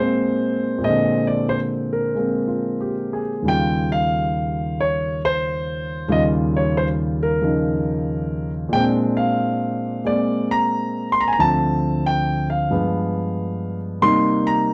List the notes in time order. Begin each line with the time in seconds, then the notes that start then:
Already playing: A#2 G#3 A#3 D4 C5
0.00 C4
0.78 A#2 G#3
0.84 C4 D#5
0.89 D3
1.27 D5
1.49 C5
1.93 A#4
2.15 G#3 A#3 C4
2.48 F4
2.81 G4
3.13 G#4
3.42 D#2 C#3 G3
3.48 F4 G5
3.92 F5
4.81 C#5
5.25 C5
6.08 D#2 C#3 G3 F4 D#5
6.57 C#5
6.77 C5
7.23 A#4
7.41 C#3 F3 D#4
8.69 A#2 G#3 G5
8.75 C4
8.80 D4
9.17 F5
10.04 G#3 A#3 C4 D5
10.51 A#5
11.12 C6
11.21 A#5
11.28 G#5
11.33 A#5
11.39 D2 D3 F3 C4 A5
12.06 G5
12.50 F5
12.70 G2 F3 G#3 B3
14.02 C3 G3 A#3 D#4 C6
14.47 A#5